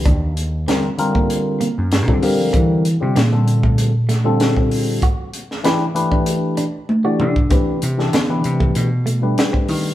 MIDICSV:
0, 0, Header, 1, 5, 480
1, 0, Start_track
1, 0, Tempo, 621118
1, 46, Time_signature, 4, 2, 24, 8
1, 7682, End_track
2, 0, Start_track
2, 0, Title_t, "Tine electric piano"
2, 0, Program_c, 0, 4
2, 519, Note_on_c, 0, 50, 75
2, 520, Note_on_c, 0, 55, 69
2, 524, Note_on_c, 0, 60, 70
2, 528, Note_on_c, 0, 65, 68
2, 530, Note_on_c, 0, 70, 77
2, 677, Note_off_c, 0, 50, 0
2, 678, Note_off_c, 0, 55, 0
2, 680, Note_off_c, 0, 60, 0
2, 682, Note_off_c, 0, 65, 0
2, 683, Note_off_c, 0, 70, 0
2, 755, Note_on_c, 0, 50, 87
2, 758, Note_on_c, 0, 55, 81
2, 762, Note_on_c, 0, 60, 76
2, 766, Note_on_c, 0, 65, 79
2, 768, Note_on_c, 0, 70, 103
2, 1291, Note_off_c, 0, 50, 0
2, 1293, Note_off_c, 0, 55, 0
2, 1294, Note_off_c, 0, 60, 0
2, 1296, Note_off_c, 0, 65, 0
2, 1298, Note_off_c, 0, 70, 0
2, 1602, Note_on_c, 0, 50, 75
2, 1604, Note_on_c, 0, 55, 67
2, 1608, Note_on_c, 0, 60, 75
2, 1609, Note_on_c, 0, 65, 69
2, 1615, Note_on_c, 0, 69, 80
2, 1708, Note_off_c, 0, 50, 0
2, 1711, Note_off_c, 0, 55, 0
2, 1715, Note_off_c, 0, 60, 0
2, 1717, Note_on_c, 0, 50, 71
2, 1720, Note_on_c, 0, 55, 68
2, 1724, Note_off_c, 0, 65, 0
2, 1724, Note_on_c, 0, 60, 67
2, 1725, Note_on_c, 0, 77, 66
2, 1727, Note_off_c, 0, 69, 0
2, 1730, Note_on_c, 0, 70, 84
2, 2201, Note_off_c, 0, 50, 0
2, 2202, Note_off_c, 0, 55, 0
2, 2204, Note_off_c, 0, 60, 0
2, 2204, Note_off_c, 0, 77, 0
2, 2207, Note_off_c, 0, 70, 0
2, 2320, Note_on_c, 0, 50, 67
2, 2324, Note_on_c, 0, 55, 68
2, 2326, Note_on_c, 0, 60, 64
2, 2330, Note_on_c, 0, 65, 64
2, 2332, Note_on_c, 0, 67, 71
2, 2472, Note_off_c, 0, 50, 0
2, 2474, Note_off_c, 0, 55, 0
2, 2475, Note_off_c, 0, 60, 0
2, 2477, Note_off_c, 0, 65, 0
2, 2478, Note_off_c, 0, 67, 0
2, 2562, Note_on_c, 0, 50, 69
2, 2564, Note_on_c, 0, 55, 66
2, 2569, Note_on_c, 0, 60, 61
2, 2572, Note_on_c, 0, 65, 59
2, 2572, Note_on_c, 0, 69, 75
2, 3018, Note_off_c, 0, 50, 0
2, 3019, Note_off_c, 0, 55, 0
2, 3021, Note_off_c, 0, 60, 0
2, 3023, Note_off_c, 0, 65, 0
2, 3023, Note_off_c, 0, 69, 0
2, 3276, Note_on_c, 0, 50, 84
2, 3280, Note_on_c, 0, 55, 78
2, 3284, Note_on_c, 0, 60, 81
2, 3288, Note_on_c, 0, 65, 76
2, 3290, Note_on_c, 0, 69, 96
2, 3877, Note_off_c, 0, 50, 0
2, 3879, Note_off_c, 0, 55, 0
2, 3881, Note_off_c, 0, 60, 0
2, 3883, Note_off_c, 0, 65, 0
2, 3884, Note_off_c, 0, 69, 0
2, 4355, Note_on_c, 0, 52, 91
2, 4356, Note_on_c, 0, 57, 87
2, 4358, Note_on_c, 0, 62, 84
2, 4363, Note_on_c, 0, 67, 85
2, 4365, Note_on_c, 0, 71, 97
2, 4515, Note_off_c, 0, 52, 0
2, 4516, Note_off_c, 0, 57, 0
2, 4516, Note_off_c, 0, 62, 0
2, 4519, Note_off_c, 0, 67, 0
2, 4520, Note_off_c, 0, 71, 0
2, 4591, Note_on_c, 0, 52, 86
2, 4596, Note_on_c, 0, 57, 79
2, 4597, Note_on_c, 0, 62, 77
2, 4600, Note_on_c, 0, 67, 77
2, 4605, Note_on_c, 0, 71, 95
2, 5129, Note_off_c, 0, 52, 0
2, 5132, Note_off_c, 0, 57, 0
2, 5132, Note_off_c, 0, 62, 0
2, 5133, Note_off_c, 0, 67, 0
2, 5136, Note_off_c, 0, 71, 0
2, 5439, Note_on_c, 0, 52, 77
2, 5441, Note_on_c, 0, 57, 69
2, 5446, Note_on_c, 0, 62, 69
2, 5447, Note_on_c, 0, 67, 70
2, 5452, Note_on_c, 0, 74, 83
2, 5671, Note_off_c, 0, 52, 0
2, 5672, Note_off_c, 0, 57, 0
2, 5674, Note_off_c, 0, 62, 0
2, 5674, Note_off_c, 0, 67, 0
2, 5677, Note_off_c, 0, 74, 0
2, 5794, Note_on_c, 0, 52, 61
2, 5796, Note_on_c, 0, 57, 58
2, 5798, Note_on_c, 0, 62, 62
2, 5802, Note_on_c, 0, 67, 62
2, 5806, Note_on_c, 0, 71, 72
2, 6026, Note_off_c, 0, 52, 0
2, 6027, Note_off_c, 0, 57, 0
2, 6028, Note_off_c, 0, 62, 0
2, 6031, Note_off_c, 0, 67, 0
2, 6032, Note_off_c, 0, 71, 0
2, 6163, Note_on_c, 0, 52, 71
2, 6167, Note_on_c, 0, 57, 64
2, 6169, Note_on_c, 0, 62, 62
2, 6171, Note_on_c, 0, 67, 60
2, 6177, Note_on_c, 0, 69, 77
2, 6313, Note_off_c, 0, 52, 0
2, 6315, Note_off_c, 0, 57, 0
2, 6316, Note_off_c, 0, 62, 0
2, 6317, Note_off_c, 0, 67, 0
2, 6320, Note_off_c, 0, 69, 0
2, 6404, Note_on_c, 0, 52, 70
2, 6407, Note_on_c, 0, 57, 64
2, 6409, Note_on_c, 0, 62, 61
2, 6412, Note_on_c, 0, 67, 58
2, 6416, Note_on_c, 0, 71, 71
2, 6859, Note_off_c, 0, 52, 0
2, 6861, Note_off_c, 0, 57, 0
2, 6862, Note_off_c, 0, 62, 0
2, 6863, Note_off_c, 0, 67, 0
2, 6865, Note_off_c, 0, 71, 0
2, 7124, Note_on_c, 0, 55, 68
2, 7127, Note_on_c, 0, 57, 65
2, 7129, Note_on_c, 0, 62, 60
2, 7133, Note_on_c, 0, 71, 76
2, 7134, Note_on_c, 0, 67, 64
2, 7682, Note_off_c, 0, 55, 0
2, 7682, Note_off_c, 0, 57, 0
2, 7682, Note_off_c, 0, 62, 0
2, 7682, Note_off_c, 0, 67, 0
2, 7682, Note_off_c, 0, 71, 0
2, 7682, End_track
3, 0, Start_track
3, 0, Title_t, "Clean electric guitar"
3, 0, Program_c, 1, 27
3, 43, Note_on_c, 1, 62, 83
3, 236, Note_off_c, 1, 62, 0
3, 528, Note_on_c, 1, 60, 78
3, 719, Note_off_c, 1, 60, 0
3, 891, Note_on_c, 1, 58, 71
3, 1083, Note_off_c, 1, 58, 0
3, 1241, Note_on_c, 1, 58, 76
3, 1434, Note_off_c, 1, 58, 0
3, 1610, Note_on_c, 1, 62, 70
3, 1802, Note_off_c, 1, 62, 0
3, 1956, Note_on_c, 1, 60, 87
3, 2152, Note_off_c, 1, 60, 0
3, 2440, Note_on_c, 1, 58, 79
3, 2634, Note_off_c, 1, 58, 0
3, 2808, Note_on_c, 1, 57, 67
3, 3001, Note_off_c, 1, 57, 0
3, 3159, Note_on_c, 1, 57, 78
3, 3353, Note_off_c, 1, 57, 0
3, 3533, Note_on_c, 1, 60, 67
3, 3724, Note_off_c, 1, 60, 0
3, 3887, Note_on_c, 1, 66, 81
3, 4078, Note_off_c, 1, 66, 0
3, 4370, Note_on_c, 1, 64, 77
3, 4560, Note_off_c, 1, 64, 0
3, 4729, Note_on_c, 1, 62, 71
3, 4922, Note_off_c, 1, 62, 0
3, 5080, Note_on_c, 1, 62, 76
3, 5274, Note_off_c, 1, 62, 0
3, 5446, Note_on_c, 1, 66, 65
3, 5640, Note_off_c, 1, 66, 0
3, 5806, Note_on_c, 1, 60, 83
3, 5997, Note_off_c, 1, 60, 0
3, 6286, Note_on_c, 1, 59, 72
3, 6477, Note_off_c, 1, 59, 0
3, 6647, Note_on_c, 1, 57, 75
3, 6841, Note_off_c, 1, 57, 0
3, 7000, Note_on_c, 1, 57, 71
3, 7194, Note_off_c, 1, 57, 0
3, 7366, Note_on_c, 1, 60, 73
3, 7560, Note_off_c, 1, 60, 0
3, 7682, End_track
4, 0, Start_track
4, 0, Title_t, "Slap bass"
4, 0, Program_c, 2, 36
4, 50, Note_on_c, 2, 39, 64
4, 496, Note_off_c, 2, 39, 0
4, 1375, Note_on_c, 2, 42, 65
4, 1490, Note_off_c, 2, 42, 0
4, 1490, Note_on_c, 2, 43, 70
4, 1566, Note_off_c, 2, 43, 0
4, 1566, Note_on_c, 2, 46, 68
4, 1641, Note_off_c, 2, 46, 0
4, 1645, Note_on_c, 2, 50, 73
4, 1716, Note_off_c, 2, 50, 0
4, 1720, Note_on_c, 2, 55, 97
4, 1857, Note_off_c, 2, 55, 0
4, 1857, Note_on_c, 2, 53, 66
4, 1964, Note_off_c, 2, 53, 0
4, 1971, Note_on_c, 2, 52, 66
4, 2308, Note_off_c, 2, 52, 0
4, 2334, Note_on_c, 2, 48, 77
4, 2439, Note_off_c, 2, 48, 0
4, 2444, Note_on_c, 2, 46, 76
4, 3853, Note_off_c, 2, 46, 0
4, 5568, Note_on_c, 2, 50, 82
4, 6015, Note_off_c, 2, 50, 0
4, 6050, Note_on_c, 2, 48, 76
4, 6280, Note_off_c, 2, 48, 0
4, 6291, Note_on_c, 2, 50, 82
4, 6520, Note_off_c, 2, 50, 0
4, 6529, Note_on_c, 2, 48, 83
4, 6759, Note_off_c, 2, 48, 0
4, 6769, Note_on_c, 2, 47, 74
4, 7216, Note_off_c, 2, 47, 0
4, 7487, Note_on_c, 2, 51, 94
4, 7682, Note_off_c, 2, 51, 0
4, 7682, End_track
5, 0, Start_track
5, 0, Title_t, "Drums"
5, 43, Note_on_c, 9, 36, 101
5, 44, Note_on_c, 9, 42, 77
5, 120, Note_off_c, 9, 36, 0
5, 122, Note_off_c, 9, 42, 0
5, 286, Note_on_c, 9, 42, 61
5, 363, Note_off_c, 9, 42, 0
5, 527, Note_on_c, 9, 42, 75
5, 535, Note_on_c, 9, 38, 96
5, 604, Note_off_c, 9, 42, 0
5, 612, Note_off_c, 9, 38, 0
5, 762, Note_on_c, 9, 42, 58
5, 839, Note_off_c, 9, 42, 0
5, 889, Note_on_c, 9, 36, 72
5, 967, Note_off_c, 9, 36, 0
5, 1005, Note_on_c, 9, 42, 76
5, 1082, Note_off_c, 9, 42, 0
5, 1243, Note_on_c, 9, 42, 59
5, 1320, Note_off_c, 9, 42, 0
5, 1481, Note_on_c, 9, 42, 74
5, 1489, Note_on_c, 9, 38, 96
5, 1558, Note_off_c, 9, 42, 0
5, 1566, Note_off_c, 9, 38, 0
5, 1607, Note_on_c, 9, 36, 66
5, 1685, Note_off_c, 9, 36, 0
5, 1721, Note_on_c, 9, 46, 73
5, 1798, Note_off_c, 9, 46, 0
5, 1961, Note_on_c, 9, 42, 77
5, 1962, Note_on_c, 9, 36, 97
5, 2038, Note_off_c, 9, 42, 0
5, 2039, Note_off_c, 9, 36, 0
5, 2203, Note_on_c, 9, 42, 61
5, 2281, Note_off_c, 9, 42, 0
5, 2444, Note_on_c, 9, 42, 71
5, 2452, Note_on_c, 9, 38, 93
5, 2521, Note_off_c, 9, 42, 0
5, 2529, Note_off_c, 9, 38, 0
5, 2686, Note_on_c, 9, 42, 55
5, 2763, Note_off_c, 9, 42, 0
5, 2808, Note_on_c, 9, 36, 72
5, 2886, Note_off_c, 9, 36, 0
5, 2922, Note_on_c, 9, 42, 74
5, 2999, Note_off_c, 9, 42, 0
5, 3163, Note_on_c, 9, 42, 55
5, 3170, Note_on_c, 9, 38, 31
5, 3240, Note_off_c, 9, 42, 0
5, 3248, Note_off_c, 9, 38, 0
5, 3400, Note_on_c, 9, 42, 72
5, 3408, Note_on_c, 9, 38, 98
5, 3478, Note_off_c, 9, 42, 0
5, 3485, Note_off_c, 9, 38, 0
5, 3528, Note_on_c, 9, 36, 62
5, 3605, Note_off_c, 9, 36, 0
5, 3642, Note_on_c, 9, 46, 74
5, 3720, Note_off_c, 9, 46, 0
5, 3881, Note_on_c, 9, 36, 92
5, 3883, Note_on_c, 9, 42, 75
5, 3959, Note_off_c, 9, 36, 0
5, 3961, Note_off_c, 9, 42, 0
5, 4123, Note_on_c, 9, 42, 61
5, 4200, Note_off_c, 9, 42, 0
5, 4259, Note_on_c, 9, 38, 34
5, 4336, Note_off_c, 9, 38, 0
5, 4362, Note_on_c, 9, 42, 79
5, 4370, Note_on_c, 9, 38, 98
5, 4440, Note_off_c, 9, 42, 0
5, 4447, Note_off_c, 9, 38, 0
5, 4604, Note_on_c, 9, 42, 59
5, 4682, Note_off_c, 9, 42, 0
5, 4726, Note_on_c, 9, 36, 72
5, 4804, Note_off_c, 9, 36, 0
5, 4840, Note_on_c, 9, 42, 82
5, 4917, Note_off_c, 9, 42, 0
5, 5079, Note_on_c, 9, 42, 59
5, 5156, Note_off_c, 9, 42, 0
5, 5325, Note_on_c, 9, 48, 59
5, 5402, Note_off_c, 9, 48, 0
5, 5562, Note_on_c, 9, 45, 85
5, 5639, Note_off_c, 9, 45, 0
5, 5689, Note_on_c, 9, 36, 80
5, 5766, Note_off_c, 9, 36, 0
5, 5800, Note_on_c, 9, 42, 76
5, 5802, Note_on_c, 9, 36, 108
5, 5877, Note_off_c, 9, 42, 0
5, 5879, Note_off_c, 9, 36, 0
5, 6043, Note_on_c, 9, 42, 66
5, 6120, Note_off_c, 9, 42, 0
5, 6178, Note_on_c, 9, 38, 33
5, 6255, Note_off_c, 9, 38, 0
5, 6284, Note_on_c, 9, 42, 74
5, 6292, Note_on_c, 9, 38, 97
5, 6362, Note_off_c, 9, 42, 0
5, 6369, Note_off_c, 9, 38, 0
5, 6523, Note_on_c, 9, 42, 58
5, 6601, Note_off_c, 9, 42, 0
5, 6649, Note_on_c, 9, 36, 71
5, 6727, Note_off_c, 9, 36, 0
5, 6763, Note_on_c, 9, 42, 78
5, 6841, Note_off_c, 9, 42, 0
5, 7007, Note_on_c, 9, 42, 55
5, 7084, Note_off_c, 9, 42, 0
5, 7247, Note_on_c, 9, 42, 68
5, 7255, Note_on_c, 9, 38, 103
5, 7325, Note_off_c, 9, 42, 0
5, 7332, Note_off_c, 9, 38, 0
5, 7372, Note_on_c, 9, 36, 66
5, 7449, Note_off_c, 9, 36, 0
5, 7484, Note_on_c, 9, 46, 76
5, 7562, Note_off_c, 9, 46, 0
5, 7682, End_track
0, 0, End_of_file